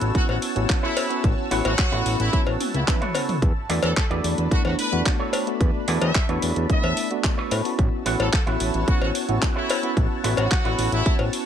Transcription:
Already playing: B3 C#4 E4 F#4 A4 C#5 F#5 A5 E6
0.01 A1, closed hi-hat
0.15 A1 B3 C#4 E4 F#4, kick, closed hi-hat
0.29 A1 F#4, cowbell
0.42 open hi-hat
0.55 A1 B3 C#4 E4 F#4, closed hi-hat
0.69 muted clean electric guitar stroke, kick, clap, closed hi-hat
0.83 E4 F#4 A4 C#5
0.97 open hi-hat, cowbell
1.10 B3 C#4 E4 F#4, closed hi-hat
1.24 A1, kick, closed hi-hat
1.51 A1 B3 C#4 E4 F#4 A4 C#5, open hi-hat
1.65 A1 F#4, closed hi-hat, cowbell
1.79 kick, clap, closed hi-hat
1.92 A1 B3 C#4 E4 F#4 A4 C#5, closed hi-hat
2.06 A1, open hi-hat
2.19 A1 E4, closed hi-hat
2.33 B3 C#4 E4 F#4, kick, closed hi-hat
2.47 A1, cowbell
2.60 open hi-hat, high tom
2.74 C#2 E4, closed hi-hat, high tom
2.87 B3 C#4 E4 B4, muted clean electric guitar stroke, kick, clap, closed hi-hat, mid tom
3.01 E4 F#4 A4 C#5, closed hi-hat, mid tom
3.14 B3 C#4 E4 F#4, open hi-hat, cowbell
3.29 mid tom, open hi-hat
3.42 E2 D4 B5, kick, closed hi-hat
3.69 E2 A3 B3 D4 E4 F#4 A4 B4 D5, open hi-hat
3.83 E2 A4, closed hi-hat, cowbell
3.97 A4, kick, clap, closed hi-hat
4.10 E2 A3 B3 D4 E4 F#4 A4 B4 D5, closed hi-hat
4.24 E2, open hi-hat
4.38 E2, closed hi-hat
4.51 E2 A3 B3 D4 E4 F#4, kick, closed hi-hat
4.65 E2 F#4, cowbell
4.79 B4, open hi-hat
4.92 E2 A3 B3 D4 F#4, closed hi-hat
5.06 muted clean electric guitar stroke, kick, clap, closed hi-hat
5.19 E4 A4 B4 C#5
5.33 open hi-hat, cowbell
5.47 A3 B3 D4 F#4, closed hi-hat
5.61 E2, kick, closed hi-hat
5.87 E2 A3 B3 D4 E4 F#4 A4 B4 D5, open hi-hat
6.02 E2 E5, closed hi-hat, cowbell
6.15 kick, clap, closed hi-hat
6.28 E2 A3 B3 D4 E4 F#4 A4 B4 C#5, closed hi-hat
6.42 E2, open hi-hat
6.56 E2, closed hi-hat
6.69 A3 B3 D4 E4 E5, kick, closed hi-hat
6.84 E2, cowbell
6.97 open hi-hat
7.10 A3 B3 D4 F#4, closed hi-hat
7.24 muted clean electric guitar stroke, kick, clap, closed hi-hat
7.38 E4 A4 B4 C#5
7.51 A2, open hi-hat, cowbell
7.65 B3 C#4 E4 F#4, open hi-hat
7.79 A1 C#5 F#5 A5 E6, kick, closed hi-hat
8.05 A1 B3 C#4 E4 F#4 A4 C#5, open hi-hat
8.20 A1 A4, closed hi-hat, cowbell
8.33 A4, kick, clap, closed hi-hat
8.46 A1 B3 C#4 E4 F#4 A4 E5, closed hi-hat
8.60 A1, open hi-hat
8.74 A1, closed hi-hat
8.87 A1 B3 C#4 E4 F#4, kick, closed hi-hat
9.02 A1 F#4, cowbell
9.15 open hi-hat
9.28 A1 B3 C#4 E4 F#4, closed hi-hat
9.42 muted clean electric guitar stroke, kick, clap, closed hi-hat
9.56 E4 F#4 A4 C#5
9.70 open hi-hat, cowbell
9.83 B3 C#4 E4 F#4, closed hi-hat
9.97 A1, kick, closed hi-hat
10.23 A1 B3 C#4 E4 F#4 A4 B4, open hi-hat
10.37 A1 F#4, closed hi-hat, cowbell
10.51 kick, clap, closed hi-hat
10.64 A1 B3 C#4 E4 F#4 A4 C#5, closed hi-hat
10.79 A1, open hi-hat
10.92 A1 E4, closed hi-hat
11.06 B3 C#4 E4 F#4, kick, closed hi-hat
11.19 A1, cowbell
11.33 open hi-hat

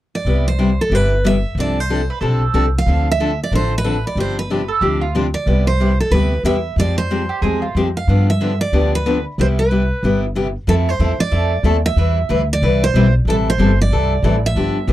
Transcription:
0.15 D5
0.25 C2 C3 G3 B3 E4 G4
0.48 C5
0.58 C3 G3 B3 E4 G4
0.81 A4
0.90 G1 C3 G3 B3 E4 G4
0.95 B4
1.24 C3 G3 B3 E4 G4 E5
1.55 C2 C3 F3 C4 D4 A4
1.60 D5
1.80 C5
1.90 C3 F3 C4 D4 A4
2.10 B4
2.21 B1 C3 F3 C4 D4 A4
2.54 C2 C3 F3 C4 D4 A4
2.78 F5
2.86 D2 D3 F3 C4 D4 A4
3.11 E5
3.20 D3 F3 C4 D4 A4
3.43 D5
3.51 A1 D3 F3 C4 D4 A4
3.55 C5
3.78 B4
3.84 D3 F3 C4 D4 A4
4.07 D5
4.15 G1 C3 F3 C4 D4 G4
4.20 C5
4.39 B4
4.50 C3 F3 C4 D4 G4
4.68 A4
4.81 D2 C3 F3 C4 D4 G4
5.01 F4
5.15 C3 F3 C4 D4 G4
5.34 D5
5.46 C2 C3 G3 B3 E4 G4
5.67 C5
5.80 C3 G3 B3 E4 G4
6.00 A4
6.11 D2 C3 G3 B3 E4 G4 B4
6.43 E2 C3 G3 B3 E4 G4 E5
6.76 F2 F3 G#3 C4 G4 D5
6.98 C5
7.11 F3 G#3 C4 G4
7.29 G4
7.42 E2 F3 G#3 C4 G4 G#4
7.62 F4
7.75 F2 F3 G#3 C4 G4
7.97 F5
8.07 G2 D3 F3 B3 D4 G4
8.30 E5
8.40 D3 F3 B3 D4 G4
8.61 D5
8.72 D2 D3 F3 B3 D4 G4
8.95 B4
9.06 D3 F3 B3 D4 G4
9.38 C2 C3 G3 B3 E4 G4 C5
9.59 B4
9.71 C3 G3 B3 E4 G4
10.03 G1 C3 G3 B3 E4 G4
10.35 C3 G3 B3 E4 G4
10.67 F2 F3 A3 C4 E4 A4
10.89 C5
10.99 E2 F3 A3 C4 E4 A4
11.18 D5, muted upright bass stroke
11.31 F2 F3 A3 C4 E4 A4
11.63 D#2 F3 A3 C4 E4 A4
11.86 E5
11.96 E2 E3 G3 C4 E4 B4
12.29 D2 E3 G3 C4 E4 B4
12.53 D5
12.61 C2 E3 G3 C4 E4 B4
12.84 C5
12.94 B1 E3 G3 C4 E4 B4
13.25 A1 E3 G3 C4 E4 A4
13.30 A4
13.50 C5
13.58 G1 E3 G3 C4 E4 A4
13.82 D5
13.90 C2 E3 G3 C4 E4 A4
14.22 A1 E3 G3 C4 E4 A4
14.46 E5
14.55 G1 D3 F3 B3 D4 G4
14.87 B1 D3 F3 B3 D4 G4

